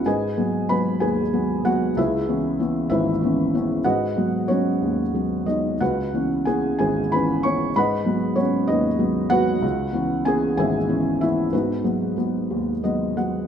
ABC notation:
X:1
M:6/8
L:1/8
Q:3/8=63
K:C#m
V:1 name="Felt piano"
[GBdg]2 [Bb] [GBg]2 [Ff] | [EGBe]3 [EBe]3 | [FBdf]2 [CFc]3 [Dd] | [FBf]2 [Gg] [Gg] [Bb] [cc'] |
[Bdfb]2 [Cc] [DBd]2 [FBf]- | [FBf]2 [Gg] [Geg]2 [Ee] | [B,DFB]4 d f |]
V:2 name="Felt piano" clef=bass
G,, [F,G,B,] [F,G,B,] D,, [F,G,B,] [F,G,B,] | C,, [E,B,C] [E,B,C] G,,, [E,B,C] [E,B,C] | G,, [F,G,B,] [F,G,B,] D,, [F,G,B,] [F,G,B,] | C,, [E,B,C] [E,B,C] G,,, [E,B,C] [E,B,C] |
G,, [F,G,B,] [F,G,B,] D,, [F,G,B,] [F,G,B,] | C,, [E,B,C] [E,B,C] G,,, [E,B,C] [E,B,C] | G,, [F,G,B,] [F,G,B,] D,, [F,G,B,] [F,G,B,] |]